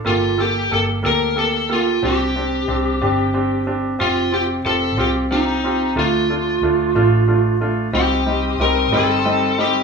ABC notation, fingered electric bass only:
X:1
M:6/8
L:1/8
Q:3/8=61
K:Cdor
V:1 name="Fingered electric bass" clef=bass
G,,,2 G,,, D,,3 | C,,2 C,, G,,,3 | F,,,2 F,,, C,,3 | D,,2 D,, A,,,3 |
C,,2 C,, G,,,3 |]